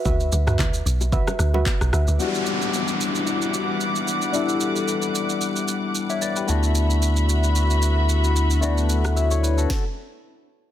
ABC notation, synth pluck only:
X:1
M:4/4
L:1/16
Q:"Swing 16ths" 1/4=112
K:Em
V:1 name="Synth pluck"
[FBe]3 [FBe] z4 [FBe]3 [FBe]3 [FBe]2 | z16 | z16 | z16 |
z16 |]